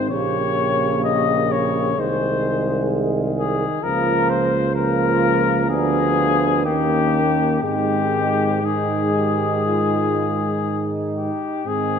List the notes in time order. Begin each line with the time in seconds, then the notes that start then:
Already playing: G#1 D#3 C4
0.09 A#1 C#3 A#3 G4 C#5
1.04 D#5
1.51 C#5
1.98 C2 D#3 G#3 G#4 C5
3.39 G#4
3.82 C#2 F3 A#3 F4 A#4
4.30 C5
4.74 F3 A#3 F4 A#4
5.67 D2 F3 B3 D4 G#4
6.64 D#2 D#3 A#3 C#4 G4
7.61 G#2 D#3 G#3 C4 G4
8.63 D#3 G#3 D#4 G#4
9.14 G4
9.65 F4
10.64 D#4
11.17 G4
11.65 G#2 D#3 G#3 C4 G#4